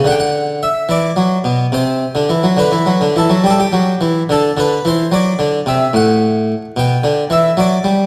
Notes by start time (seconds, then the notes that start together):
0.04 D3 F#5
0.11 G5
0.20 F#5
0.63 E5
0.89 E3 D5
1.16 F#3
1.44 B2
1.72 C3 C5
2.15 D3
2.29 E3
2.43 F#3
2.57 D3 B4
2.72 E3
2.86 F#3
3.01 D3
3.16 E3 A4
3.30 F#3
3.44 G3 G4
3.50 A4
3.60 G4
3.73 F#3
4.01 E3
4.29 D3 A4
4.57 D3 B4
4.85 E3 C5
5.12 F#3 D5
5.39 D3
5.66 C3 E5
5.93 A2 F#5
6.76 B2 G5
7.04 D3
7.30 E3 E5
7.57 F#3 D5
7.84 G3